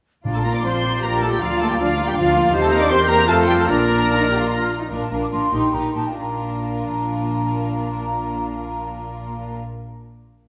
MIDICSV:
0, 0, Header, 1, 12, 480
1, 0, Start_track
1, 0, Key_signature, -2, "major"
1, 0, Tempo, 388350
1, 313, Time_signature, 3, 2, 24, 8
1, 1751, Tempo, 372439
1, 4151, Tempo, 402685
1, 5591, Tempo, 415225
1, 7031, Tempo, 434468
1, 12276, End_track
2, 0, Start_track
2, 0, Title_t, "Flute section"
2, 0, Program_c, 0, 73
2, 302, Note_on_c, 0, 82, 44
2, 3132, Note_off_c, 0, 82, 0
2, 3195, Note_on_c, 0, 91, 70
2, 3633, Note_off_c, 0, 91, 0
2, 3667, Note_on_c, 0, 91, 74
2, 4144, Note_off_c, 0, 91, 0
2, 4157, Note_on_c, 0, 89, 62
2, 4610, Note_off_c, 0, 89, 0
2, 4625, Note_on_c, 0, 89, 65
2, 5809, Note_off_c, 0, 89, 0
2, 6198, Note_on_c, 0, 81, 58
2, 6304, Note_off_c, 0, 81, 0
2, 6320, Note_on_c, 0, 82, 53
2, 6433, Note_off_c, 0, 82, 0
2, 6442, Note_on_c, 0, 86, 67
2, 6492, Note_off_c, 0, 86, 0
2, 6553, Note_on_c, 0, 84, 74
2, 7025, Note_off_c, 0, 84, 0
2, 7036, Note_on_c, 0, 82, 68
2, 7277, Note_off_c, 0, 82, 0
2, 7280, Note_on_c, 0, 81, 55
2, 7399, Note_off_c, 0, 81, 0
2, 7408, Note_on_c, 0, 79, 45
2, 7524, Note_on_c, 0, 82, 49
2, 7526, Note_off_c, 0, 79, 0
2, 11242, Note_off_c, 0, 82, 0
2, 12276, End_track
3, 0, Start_track
3, 0, Title_t, "Violin section"
3, 0, Program_c, 1, 48
3, 431, Note_on_c, 1, 81, 53
3, 480, Note_off_c, 1, 81, 0
3, 554, Note_on_c, 1, 82, 53
3, 674, Note_off_c, 1, 82, 0
3, 687, Note_on_c, 1, 86, 56
3, 733, Note_off_c, 1, 86, 0
3, 797, Note_on_c, 1, 84, 73
3, 1267, Note_off_c, 1, 84, 0
3, 1270, Note_on_c, 1, 82, 69
3, 1512, Note_off_c, 1, 82, 0
3, 1515, Note_on_c, 1, 81, 66
3, 1562, Note_off_c, 1, 81, 0
3, 1639, Note_on_c, 1, 79, 62
3, 1752, Note_off_c, 1, 79, 0
3, 1752, Note_on_c, 1, 77, 77
3, 1990, Note_off_c, 1, 77, 0
3, 1995, Note_on_c, 1, 81, 76
3, 2116, Note_off_c, 1, 81, 0
3, 2128, Note_on_c, 1, 79, 54
3, 2242, Note_off_c, 1, 79, 0
3, 2247, Note_on_c, 1, 77, 77
3, 2595, Note_off_c, 1, 77, 0
3, 2609, Note_on_c, 1, 79, 78
3, 2717, Note_on_c, 1, 77, 81
3, 2722, Note_off_c, 1, 79, 0
3, 3180, Note_off_c, 1, 77, 0
3, 3321, Note_on_c, 1, 81, 79
3, 3365, Note_off_c, 1, 81, 0
3, 3438, Note_on_c, 1, 82, 73
3, 3548, Note_off_c, 1, 82, 0
3, 3557, Note_on_c, 1, 86, 90
3, 3669, Note_off_c, 1, 86, 0
3, 3673, Note_on_c, 1, 84, 90
3, 3907, Note_on_c, 1, 82, 105
3, 3909, Note_off_c, 1, 84, 0
3, 4148, Note_off_c, 1, 82, 0
3, 4151, Note_on_c, 1, 81, 94
3, 4244, Note_off_c, 1, 81, 0
3, 4381, Note_on_c, 1, 79, 77
3, 4499, Note_off_c, 1, 79, 0
3, 4503, Note_on_c, 1, 81, 63
3, 4618, Note_on_c, 1, 82, 93
3, 4621, Note_off_c, 1, 81, 0
3, 5805, Note_off_c, 1, 82, 0
3, 6065, Note_on_c, 1, 70, 54
3, 6300, Note_off_c, 1, 70, 0
3, 6312, Note_on_c, 1, 70, 46
3, 6534, Note_off_c, 1, 70, 0
3, 6548, Note_on_c, 1, 70, 49
3, 6772, Note_off_c, 1, 70, 0
3, 6786, Note_on_c, 1, 70, 50
3, 7021, Note_off_c, 1, 70, 0
3, 7034, Note_on_c, 1, 70, 42
3, 7269, Note_off_c, 1, 70, 0
3, 7282, Note_on_c, 1, 70, 38
3, 7511, Note_off_c, 1, 70, 0
3, 7524, Note_on_c, 1, 70, 43
3, 11242, Note_off_c, 1, 70, 0
3, 12276, End_track
4, 0, Start_track
4, 0, Title_t, "Violin section"
4, 0, Program_c, 2, 48
4, 425, Note_on_c, 2, 81, 53
4, 476, Note_off_c, 2, 81, 0
4, 544, Note_on_c, 2, 82, 40
4, 668, Note_off_c, 2, 82, 0
4, 674, Note_on_c, 2, 86, 47
4, 788, Note_on_c, 2, 84, 55
4, 794, Note_off_c, 2, 86, 0
4, 1263, Note_off_c, 2, 84, 0
4, 1267, Note_on_c, 2, 82, 59
4, 1505, Note_off_c, 2, 82, 0
4, 1516, Note_on_c, 2, 81, 50
4, 1630, Note_on_c, 2, 79, 54
4, 1634, Note_off_c, 2, 81, 0
4, 1741, Note_on_c, 2, 77, 62
4, 1747, Note_off_c, 2, 79, 0
4, 1987, Note_on_c, 2, 81, 58
4, 1989, Note_off_c, 2, 77, 0
4, 2109, Note_off_c, 2, 81, 0
4, 2109, Note_on_c, 2, 79, 47
4, 2218, Note_on_c, 2, 77, 63
4, 2233, Note_off_c, 2, 79, 0
4, 2580, Note_off_c, 2, 77, 0
4, 2593, Note_on_c, 2, 79, 66
4, 2704, Note_on_c, 2, 77, 71
4, 2714, Note_off_c, 2, 79, 0
4, 3183, Note_off_c, 2, 77, 0
4, 3296, Note_on_c, 2, 81, 78
4, 3345, Note_off_c, 2, 81, 0
4, 3416, Note_on_c, 2, 82, 61
4, 3528, Note_on_c, 2, 86, 79
4, 3537, Note_off_c, 2, 82, 0
4, 3647, Note_on_c, 2, 84, 73
4, 3652, Note_off_c, 2, 86, 0
4, 3896, Note_off_c, 2, 84, 0
4, 3900, Note_on_c, 2, 82, 79
4, 3999, Note_off_c, 2, 82, 0
4, 4154, Note_on_c, 2, 81, 79
4, 4247, Note_off_c, 2, 81, 0
4, 4393, Note_on_c, 2, 79, 61
4, 4439, Note_off_c, 2, 79, 0
4, 4505, Note_on_c, 2, 81, 64
4, 4622, Note_off_c, 2, 81, 0
4, 4624, Note_on_c, 2, 82, 71
4, 5808, Note_off_c, 2, 82, 0
4, 6070, Note_on_c, 2, 65, 50
4, 6297, Note_off_c, 2, 65, 0
4, 6311, Note_on_c, 2, 65, 45
4, 6526, Note_off_c, 2, 65, 0
4, 6540, Note_on_c, 2, 65, 42
4, 6779, Note_off_c, 2, 65, 0
4, 6784, Note_on_c, 2, 67, 41
4, 7016, Note_off_c, 2, 67, 0
4, 7030, Note_on_c, 2, 67, 47
4, 7258, Note_off_c, 2, 67, 0
4, 7271, Note_on_c, 2, 67, 36
4, 7514, Note_off_c, 2, 67, 0
4, 7521, Note_on_c, 2, 65, 41
4, 11241, Note_off_c, 2, 65, 0
4, 12276, End_track
5, 0, Start_track
5, 0, Title_t, "Oboe"
5, 0, Program_c, 3, 68
5, 314, Note_on_c, 3, 74, 45
5, 3138, Note_off_c, 3, 74, 0
5, 3189, Note_on_c, 3, 72, 61
5, 3630, Note_off_c, 3, 72, 0
5, 3658, Note_on_c, 3, 72, 60
5, 4139, Note_off_c, 3, 72, 0
5, 4156, Note_on_c, 3, 72, 67
5, 4635, Note_on_c, 3, 74, 54
5, 4653, Note_off_c, 3, 72, 0
5, 5837, Note_off_c, 3, 74, 0
5, 12276, End_track
6, 0, Start_track
6, 0, Title_t, "Trumpet section"
6, 0, Program_c, 4, 61
6, 431, Note_on_c, 4, 69, 47
6, 486, Note_off_c, 4, 69, 0
6, 553, Note_on_c, 4, 70, 42
6, 673, Note_off_c, 4, 70, 0
6, 674, Note_on_c, 4, 74, 48
6, 797, Note_off_c, 4, 74, 0
6, 797, Note_on_c, 4, 72, 58
6, 1268, Note_off_c, 4, 72, 0
6, 1280, Note_on_c, 4, 70, 58
6, 1514, Note_on_c, 4, 69, 63
6, 1516, Note_off_c, 4, 70, 0
6, 1633, Note_off_c, 4, 69, 0
6, 1637, Note_on_c, 4, 67, 54
6, 1751, Note_off_c, 4, 67, 0
6, 1756, Note_on_c, 4, 65, 68
6, 1997, Note_off_c, 4, 65, 0
6, 1998, Note_on_c, 4, 69, 59
6, 2052, Note_off_c, 4, 69, 0
6, 2120, Note_on_c, 4, 67, 47
6, 2173, Note_off_c, 4, 67, 0
6, 2241, Note_on_c, 4, 65, 65
6, 2592, Note_off_c, 4, 65, 0
6, 2605, Note_on_c, 4, 67, 61
6, 2657, Note_off_c, 4, 67, 0
6, 2723, Note_on_c, 4, 65, 72
6, 3183, Note_off_c, 4, 65, 0
6, 3316, Note_on_c, 4, 69, 68
6, 3422, Note_off_c, 4, 69, 0
6, 3437, Note_on_c, 4, 70, 63
6, 3488, Note_off_c, 4, 70, 0
6, 3553, Note_on_c, 4, 74, 73
6, 3605, Note_off_c, 4, 74, 0
6, 3673, Note_on_c, 4, 72, 74
6, 3780, Note_off_c, 4, 72, 0
6, 3917, Note_on_c, 4, 70, 82
6, 4025, Note_off_c, 4, 70, 0
6, 4162, Note_on_c, 4, 69, 82
6, 4386, Note_off_c, 4, 69, 0
6, 4397, Note_on_c, 4, 67, 65
6, 4447, Note_off_c, 4, 67, 0
6, 4514, Note_on_c, 4, 69, 58
6, 4627, Note_off_c, 4, 69, 0
6, 4633, Note_on_c, 4, 70, 72
6, 5836, Note_off_c, 4, 70, 0
6, 12276, End_track
7, 0, Start_track
7, 0, Title_t, "Clarinet"
7, 0, Program_c, 5, 71
7, 312, Note_on_c, 5, 65, 49
7, 3137, Note_off_c, 5, 65, 0
7, 3194, Note_on_c, 5, 67, 64
7, 3666, Note_on_c, 5, 70, 72
7, 3685, Note_off_c, 5, 67, 0
7, 4145, Note_on_c, 5, 65, 60
7, 4163, Note_off_c, 5, 70, 0
7, 4621, Note_off_c, 5, 65, 0
7, 4627, Note_on_c, 5, 65, 53
7, 5810, Note_off_c, 5, 65, 0
7, 12276, End_track
8, 0, Start_track
8, 0, Title_t, "Cello section"
8, 0, Program_c, 6, 48
8, 308, Note_on_c, 6, 65, 58
8, 1226, Note_off_c, 6, 65, 0
8, 1279, Note_on_c, 6, 67, 54
8, 1752, Note_off_c, 6, 67, 0
8, 1757, Note_on_c, 6, 65, 66
8, 2229, Note_off_c, 6, 65, 0
8, 2243, Note_on_c, 6, 62, 63
8, 2710, Note_off_c, 6, 62, 0
8, 2720, Note_on_c, 6, 65, 76
8, 3181, Note_off_c, 6, 65, 0
8, 3197, Note_on_c, 6, 63, 76
8, 3667, Note_off_c, 6, 63, 0
8, 3671, Note_on_c, 6, 67, 77
8, 4155, Note_off_c, 6, 67, 0
8, 4158, Note_on_c, 6, 65, 75
8, 4618, Note_off_c, 6, 65, 0
8, 4628, Note_on_c, 6, 62, 65
8, 5059, Note_off_c, 6, 62, 0
8, 5109, Note_on_c, 6, 62, 74
8, 5220, Note_off_c, 6, 62, 0
8, 5236, Note_on_c, 6, 63, 61
8, 5350, Note_off_c, 6, 63, 0
8, 5352, Note_on_c, 6, 67, 70
8, 5469, Note_off_c, 6, 67, 0
8, 5472, Note_on_c, 6, 65, 60
8, 5954, Note_off_c, 6, 65, 0
8, 5963, Note_on_c, 6, 63, 59
8, 6073, Note_on_c, 6, 46, 56
8, 6076, Note_off_c, 6, 63, 0
8, 6166, Note_off_c, 6, 46, 0
8, 6313, Note_on_c, 6, 46, 50
8, 6405, Note_off_c, 6, 46, 0
8, 6556, Note_on_c, 6, 46, 48
8, 6649, Note_off_c, 6, 46, 0
8, 6794, Note_on_c, 6, 46, 47
8, 6886, Note_off_c, 6, 46, 0
8, 7035, Note_on_c, 6, 46, 57
8, 7123, Note_off_c, 6, 46, 0
8, 7284, Note_on_c, 6, 46, 43
8, 7373, Note_off_c, 6, 46, 0
8, 7530, Note_on_c, 6, 46, 45
8, 11245, Note_off_c, 6, 46, 0
8, 12276, End_track
9, 0, Start_track
9, 0, Title_t, "Viola section"
9, 0, Program_c, 7, 48
9, 314, Note_on_c, 7, 62, 40
9, 317, Note_on_c, 7, 53, 43
9, 538, Note_off_c, 7, 62, 0
9, 540, Note_off_c, 7, 53, 0
9, 552, Note_on_c, 7, 58, 40
9, 556, Note_on_c, 7, 65, 38
9, 797, Note_off_c, 7, 58, 0
9, 797, Note_on_c, 7, 53, 42
9, 799, Note_off_c, 7, 65, 0
9, 800, Note_on_c, 7, 62, 41
9, 1037, Note_on_c, 7, 58, 39
9, 1038, Note_off_c, 7, 53, 0
9, 1039, Note_on_c, 7, 65, 38
9, 1040, Note_off_c, 7, 62, 0
9, 1274, Note_on_c, 7, 62, 39
9, 1276, Note_off_c, 7, 58, 0
9, 1278, Note_off_c, 7, 65, 0
9, 1279, Note_on_c, 7, 53, 44
9, 1497, Note_off_c, 7, 62, 0
9, 1499, Note_off_c, 7, 53, 0
9, 1525, Note_on_c, 7, 58, 42
9, 1526, Note_on_c, 7, 65, 40
9, 1754, Note_on_c, 7, 62, 50
9, 1756, Note_off_c, 7, 58, 0
9, 1757, Note_off_c, 7, 65, 0
9, 1757, Note_on_c, 7, 53, 55
9, 1979, Note_off_c, 7, 62, 0
9, 1981, Note_off_c, 7, 53, 0
9, 1998, Note_on_c, 7, 58, 49
9, 2001, Note_on_c, 7, 65, 49
9, 2235, Note_on_c, 7, 53, 51
9, 2236, Note_on_c, 7, 62, 47
9, 2238, Note_off_c, 7, 58, 0
9, 2239, Note_off_c, 7, 65, 0
9, 2476, Note_off_c, 7, 53, 0
9, 2477, Note_off_c, 7, 62, 0
9, 2483, Note_on_c, 7, 65, 51
9, 2486, Note_on_c, 7, 58, 54
9, 2719, Note_off_c, 7, 65, 0
9, 2720, Note_off_c, 7, 58, 0
9, 2731, Note_on_c, 7, 53, 53
9, 2733, Note_on_c, 7, 62, 56
9, 2944, Note_off_c, 7, 53, 0
9, 2945, Note_off_c, 7, 62, 0
9, 2964, Note_on_c, 7, 58, 56
9, 2964, Note_on_c, 7, 65, 51
9, 3194, Note_off_c, 7, 58, 0
9, 3194, Note_off_c, 7, 65, 0
9, 3205, Note_on_c, 7, 60, 71
9, 3206, Note_on_c, 7, 67, 66
9, 3638, Note_off_c, 7, 60, 0
9, 3639, Note_off_c, 7, 67, 0
9, 3669, Note_on_c, 7, 60, 64
9, 3675, Note_on_c, 7, 67, 60
9, 4140, Note_off_c, 7, 60, 0
9, 4148, Note_off_c, 7, 67, 0
9, 4155, Note_on_c, 7, 60, 66
9, 4156, Note_on_c, 7, 65, 68
9, 4616, Note_off_c, 7, 60, 0
9, 4619, Note_off_c, 7, 65, 0
9, 4630, Note_on_c, 7, 62, 69
9, 4633, Note_on_c, 7, 65, 61
9, 5813, Note_off_c, 7, 65, 0
9, 5835, Note_off_c, 7, 62, 0
9, 6079, Note_on_c, 7, 62, 46
9, 6307, Note_off_c, 7, 62, 0
9, 6323, Note_on_c, 7, 62, 45
9, 6542, Note_off_c, 7, 62, 0
9, 6556, Note_on_c, 7, 62, 44
9, 6787, Note_off_c, 7, 62, 0
9, 6793, Note_on_c, 7, 63, 51
9, 7030, Note_off_c, 7, 63, 0
9, 7044, Note_on_c, 7, 63, 46
9, 7272, Note_off_c, 7, 63, 0
9, 7285, Note_on_c, 7, 63, 39
9, 7522, Note_off_c, 7, 63, 0
9, 7529, Note_on_c, 7, 62, 40
9, 11245, Note_off_c, 7, 62, 0
9, 12276, End_track
10, 0, Start_track
10, 0, Title_t, "French horn section"
10, 0, Program_c, 8, 60
10, 424, Note_on_c, 8, 57, 44
10, 480, Note_off_c, 8, 57, 0
10, 556, Note_on_c, 8, 58, 44
10, 669, Note_on_c, 8, 62, 50
10, 675, Note_off_c, 8, 58, 0
10, 789, Note_on_c, 8, 60, 54
10, 794, Note_off_c, 8, 62, 0
10, 1273, Note_off_c, 8, 60, 0
10, 1280, Note_on_c, 8, 58, 59
10, 1516, Note_off_c, 8, 58, 0
10, 1517, Note_on_c, 8, 57, 59
10, 1635, Note_off_c, 8, 57, 0
10, 1638, Note_on_c, 8, 55, 47
10, 1754, Note_off_c, 8, 55, 0
10, 1760, Note_on_c, 8, 53, 50
10, 1868, Note_off_c, 8, 53, 0
10, 1992, Note_on_c, 8, 57, 63
10, 2047, Note_off_c, 8, 57, 0
10, 2124, Note_on_c, 8, 55, 50
10, 2177, Note_off_c, 8, 55, 0
10, 2249, Note_on_c, 8, 53, 58
10, 2408, Note_off_c, 8, 53, 0
10, 2601, Note_on_c, 8, 55, 61
10, 2716, Note_off_c, 8, 55, 0
10, 2718, Note_on_c, 8, 53, 72
10, 3180, Note_off_c, 8, 53, 0
10, 3304, Note_on_c, 8, 57, 78
10, 3416, Note_off_c, 8, 57, 0
10, 3424, Note_on_c, 8, 58, 67
10, 3536, Note_on_c, 8, 62, 83
10, 3543, Note_off_c, 8, 58, 0
10, 3591, Note_off_c, 8, 62, 0
10, 3653, Note_on_c, 8, 60, 67
10, 3895, Note_off_c, 8, 60, 0
10, 3898, Note_on_c, 8, 58, 75
10, 4139, Note_on_c, 8, 57, 78
10, 4149, Note_off_c, 8, 58, 0
10, 4379, Note_off_c, 8, 57, 0
10, 4382, Note_on_c, 8, 55, 66
10, 4436, Note_off_c, 8, 55, 0
10, 4494, Note_on_c, 8, 57, 65
10, 4550, Note_off_c, 8, 57, 0
10, 4606, Note_on_c, 8, 58, 71
10, 5799, Note_off_c, 8, 58, 0
10, 12276, End_track
11, 0, Start_track
11, 0, Title_t, "Timpani"
11, 0, Program_c, 10, 47
11, 309, Note_on_c, 10, 46, 60
11, 988, Note_off_c, 10, 46, 0
11, 12276, End_track
12, 0, Start_track
12, 0, Title_t, "Double bass section"
12, 0, Program_c, 11, 48
12, 311, Note_on_c, 11, 34, 50
12, 740, Note_off_c, 11, 34, 0
12, 793, Note_on_c, 11, 34, 49
12, 1219, Note_off_c, 11, 34, 0
12, 1275, Note_on_c, 11, 34, 54
12, 1695, Note_off_c, 11, 34, 0
12, 1749, Note_on_c, 11, 38, 59
12, 2178, Note_off_c, 11, 38, 0
12, 2230, Note_on_c, 11, 38, 58
12, 2657, Note_off_c, 11, 38, 0
12, 2717, Note_on_c, 11, 38, 71
12, 3134, Note_off_c, 11, 38, 0
12, 3188, Note_on_c, 11, 39, 68
12, 3629, Note_off_c, 11, 39, 0
12, 3665, Note_on_c, 11, 40, 74
12, 4152, Note_off_c, 11, 40, 0
12, 4155, Note_on_c, 11, 41, 72
12, 4625, Note_off_c, 11, 41, 0
12, 4625, Note_on_c, 11, 34, 61
12, 5832, Note_off_c, 11, 34, 0
12, 6080, Note_on_c, 11, 34, 58
12, 6172, Note_off_c, 11, 34, 0
12, 6320, Note_on_c, 11, 34, 54
12, 6412, Note_off_c, 11, 34, 0
12, 6552, Note_on_c, 11, 34, 51
12, 6645, Note_off_c, 11, 34, 0
12, 6793, Note_on_c, 11, 34, 53
12, 6886, Note_off_c, 11, 34, 0
12, 7039, Note_on_c, 11, 34, 51
12, 7127, Note_off_c, 11, 34, 0
12, 7281, Note_on_c, 11, 34, 42
12, 7369, Note_off_c, 11, 34, 0
12, 7524, Note_on_c, 11, 34, 44
12, 11242, Note_off_c, 11, 34, 0
12, 12276, End_track
0, 0, End_of_file